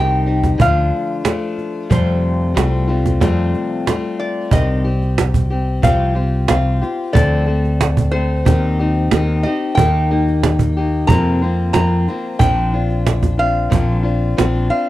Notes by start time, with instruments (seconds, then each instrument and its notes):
Already playing: fretless electric bass C2, steel-string acoustic guitar D#3 C4 D#4 G4, resonator guitar played with a steel bar G5
0.26 steel-string acoustic guitar C4 D#4 G4
0.44 cajon bass, cajon slap
0.58 fretless electric bass D2, steel-string acoustic guitar D3 F3 A3 D4 F4, resonator guitar played with a steel bar F5, cajon bass
1.24 steel-string acoustic guitar F3 A3 D4 F4, cajon slap
1.58 cajon slap
1.89 steel-string acoustic guitar F2 C3 G3 A3 C4 F4, fretless electric bass F2, resonator guitar played with a steel bar C5, cajon bass
2.54 fretless electric bass C2, steel-string acoustic guitar G3 A3 C4 F4, cajon slap
2.87 steel-string acoustic guitar G3 A3 C4 F4
3.06 cajon bass, cajon slap
3.20 steel-string acoustic guitar F2 C3 G3 A3 C4 F4, fretless electric bass F2, cajon bass, cajon slap
3.54 cajon slap
3.86 steel-string acoustic guitar G3 A3 C4 F4, cajon slap
4.20 resonator guitar played with a steel bar D5
4.51 fretless electric bass C2, steel-string acoustic guitar C3 D#3 C4 G4, resonator guitar played with a steel bar D#5, cajon bass
4.84 steel-string acoustic guitar C4 G4
5.02 cajon slap
5.18 cajon slap
5.34 cajon bass
5.50 steel-string acoustic guitar C4 G4
5.82 fretless electric bass C2, steel-string acoustic guitar C3 F3 C4 F4 G4, resonator guitar played with a steel bar F5, cajon bass
6.15 steel-string acoustic guitar C4 F4 G4
6.48 fretless electric bass C2, steel-string acoustic guitar F3 C4 F4 G4, resonator guitar played with a steel bar F5, cajon slap
6.82 steel-string acoustic guitar C4 F4 G4, cajon slap
7.13 fretless electric bass D2, steel-string acoustic guitar D3 F3 A3 C4 A4, resonator guitar played with a steel bar D5, cajon bass
7.46 steel-string acoustic guitar A3 C4 A4
7.64 cajon slap
7.81 cajon slap
7.97 cajon bass
8.11 steel-string acoustic guitar A3 C4 A4, resonator guitar played with a steel bar C5
8.45 fretless electric bass D#2, steel-string acoustic guitar D#3 C4 D#4 G4, cajon bass
8.79 steel-string acoustic guitar C4 D#4 G4
9.11 fretless electric bass D#2, steel-string acoustic guitar D#3 C4 D#4 G4, cajon slap
9.43 steel-string acoustic guitar C4 D#4 G4, resonator guitar played with a steel bar D#5, cajon slap
9.75 fretless electric bass D#2, steel-string acoustic guitar D#3 A#3 D#4, resonator guitar played with a steel bar G5, cajon bass
9.79 steel-string acoustic guitar G4
10.11 steel-string acoustic guitar A#3 D#4 G4
10.28 cajon slap
10.43 cajon slap
10.59 cajon bass
10.77 steel-string acoustic guitar A#3 D#4 G4
11.07 fretless electric bass F2, steel-string acoustic guitar F2 C3 F3 A#3, resonator guitar played with a steel bar A#5, cajon bass
11.12 steel-string acoustic guitar C4 F4
11.42 steel-string acoustic guitar F3 A#3 C4 F4
11.73 fretless electric bass F2, steel-string acoustic guitar F3 A#3 C4 F4, resonator guitar played with a steel bar A#5, cajon slap
12.07 steel-string acoustic guitar F3 A#3 C4 F4, cajon slap
12.39 fretless electric bass A#1, steel-string acoustic guitar A#2 F3 C4 D4 F4, resonator guitar played with a steel bar G5, cajon bass
12.74 steel-string acoustic guitar C4 D4 F4
12.90 cajon slap
13.07 cajon slap
13.23 cajon bass, cajon slap
13.38 steel-string acoustic guitar C4 D4 F4, resonator guitar played with a steel bar F5
13.70 fretless electric bass A#1, steel-string acoustic guitar A#2 F3 C4 D4 F4, cajon bass
14.03 steel-string acoustic guitar C4 D4 F4, cajon slap
14.37 fretless electric bass A#1, steel-string acoustic guitar F3 C4 D4 F4, cajon slap
14.70 steel-string acoustic guitar C4 D4 F4, resonator guitar played with a steel bar F5